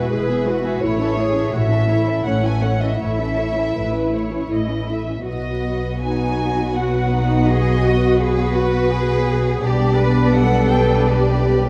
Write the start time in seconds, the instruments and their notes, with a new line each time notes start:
Already playing: viola section E3 B3, cello section F#4, violin section G#4 B4 E5
0.09 double bass section E1, viola section G#3 E4, cello section G#4, violin section B4
0.28 viola section E3 B3, violin section G#4 E5
0.46 viola section G#3 E4, cello section F#4, violin section B4
0.64 viola section E3 B3, violin section G#4 E5
0.82 double bass section A1, viola section A3 E4, cello section E4, violin section C#5
1.00 viola section E3 C#4, violin section A4 E5
1.17 viola section A3 E4, cello section G#4, violin section C#5
1.35 viola section E3 C#4, violin section A4 E5
1.53 double bass section A1, viola section A3 E4, cello section F#4, violin section C#5 E5
1.71 viola section E3 C#4, violin section A4 E5
1.89 viola section A3 E4, cello section E4, violin section C#5
2.07 viola section E3 C#4, violin section A4 E5
2.25 double bass section A1, viola section A3 E4, cello section C#4, violin section C#5 F#5
2.43 viola section E3 C#4, violin section A4 E5 G#5
2.62 viola section A3 E4, violin section C#5 F#5
2.81 viola section E3 C#4, violin section A4 D#5 E5
2.99 double bass section A1, viola section A3 E4, cello section E4, violin section C#5 E5
3.18 viola section E3 C#4, violin section A4 E5
3.37 viola section A3 E4, violin section C#5
3.56 viola section E3 C#4, violin section A4 E5
3.75 double bass section A1, viola section A3 E4, violin section B4
3.94 viola section E3 C#4
4.13 viola section A3 E4, violin section C#5
4.31 viola section E3 C#4
4.49 double bass section A1, viola section A3 E4, violin section D#5
4.69 viola section E3 C#4
4.88 viola section A3 E4, violin section E5
5.07 viola section E3 C#4
5.25 double bass section B1, viola section F#3 B3, violin section F#4 B4 D#5
6.02 cello section D#4, violin section G#5
6.76 cello section F#4, violin section F#5
7.12 cello section D#4
7.47 cello section G#4, violin section D#5
7.84 cello section F#4
8.19 cello section G#4, violin section B4
8.56 cello section F#4
8.92 cello section G#4
9.63 double bass section B1, viola section G3 B3, violin section D4 B4 D5, cello section G4
10.00 cello section B4
10.35 cello section A4, violin section F#5
10.71 violin section G5
11.06 cello section G4, violin section D5